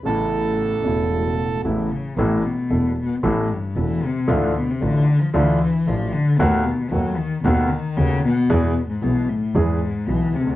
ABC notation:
X:1
M:4/4
L:1/16
Q:1/4=114
K:A
V:1 name="Bandoneon"
A12 z4 | [K:Ddor] z16 | z16 | z16 |
z16 |]
V:2 name="Grand piano" clef=bass
[A,,,A,,C,A,B,E]6 [E,,,E,,C,A,B,E]6 [A,,,A,,C,A,B,E]2 z2 | [K:Ddor] [A,,,A,,E,A,B,A]2 z2 [E,,,E,,E,A,B,A]2 z2 [A,,,A,,E,A,B,A]2 z2 [E,,,E,,E,A,B,A]2 z2 | [D,,D,E,A,DF]2 z2 [A,,,A,,E,A,DF]2 z2 [D,,D,E,A,DF]2 z2 [A,,,A,,E,A,DF]2 z2 | [^D,,^D,A,B,^F]2 z2 [D,,D,A,B,F]2 z2 [D,,D,A,B,F]2 z2 [D,,D,A,B,F]2 z2 |
[E,,E,^G,B,^G]2 z2 [B,,,B,,E,G,B,G]2 z2 [E,,E,G,B,G]2 z2 [B,,,B,,E,G,B,G]2 z/2 ^C,,/2 D,,/2 z/2 |]
V:3 name="Cello" clef=bass
A,,12 E,2 C,2 | [K:Ddor] A,,2 B,,4 B,,2 A,,2 G,,2 E,2 C,2 | A,,2 B,, C, D,3 F, E,4 F,2 D,2 | A,,2 B,,2 ^F,2 ^D,2 B,,2 D,2 ^C,2 B,,2- |
B,,3 ^G,, B,,2 A,,2 G,,4 E,2 C,2 |]
V:4 name="Double bass" clef=bass
A,,,6 E,,,6 A,,,2 z2 | [K:Ddor] A,,,2 z2 E,,,2 z2 A,,,2 z2 E,,,2 z2 | D,,2 z2 A,,,2 z2 D,,2 z2 A,,,2 z2 | ^D,,2 z2 D,,2 z2 D,,2 z2 D,,2 z2 |
E,,2 z2 B,,,2 z2 E,,2 z2 B,,,2 D,,2 |]